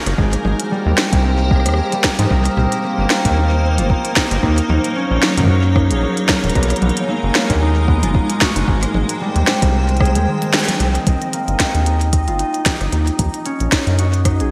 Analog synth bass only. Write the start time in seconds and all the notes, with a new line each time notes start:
0.06 F#1
0.18 G#1
0.45 G#1
0.86 D#2
1.13 C2
1.66 D#2
2.19 G#2
2.31 C2
2.57 C2
2.99 G1
3.25 D#2
3.78 G1
4.31 G1
4.43 D#2
4.70 D#2
5.11 A#1
5.38 F#2
5.91 A#1
6.44 D#1
6.55 B1
6.82 B1
7.23 F#1
7.50 D#2
8.03 F#1
8.56 F#1
8.68 G#1
8.94 G#1
9.36 D#2
9.62 C2
10.15 D#2
10.80 C2
11.07 C2
11.48 G1
11.75 D#2
12.28 G1
12.81 G1
12.93 D#2
13.19 D#2
13.61 A#1
13.87 F#2
14.40 A#1